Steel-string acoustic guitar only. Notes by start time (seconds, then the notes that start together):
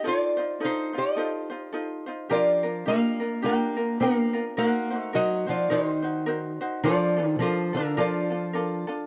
2.31 F3
2.88 A#3
3.44 A#3
4.01 A#3
4.58 A#3
4.96 A3
5.15 F#3
5.49 F3
5.71 D#3
6.84 F3
7.25 D#3
7.39 F3
7.74 D3
7.98 F3